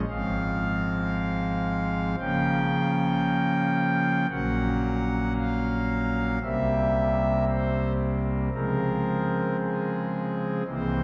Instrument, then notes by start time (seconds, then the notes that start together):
pipe organ
0.09 G#1 G#2 F3 G#3 C4 F5
2.19 C#3 F3 A#3 C#4 G5
4.30 A#1 A#2 F#3 A#3 C#4 F#5
5.36 F5
6.42 C2 C3 G3 A#3 C4 E5
7.48 C5
8.54 C#3 F3 G#3 C4 A#4
9.60 G#4
10.66 C2 C3 E3 A#3 C4 C5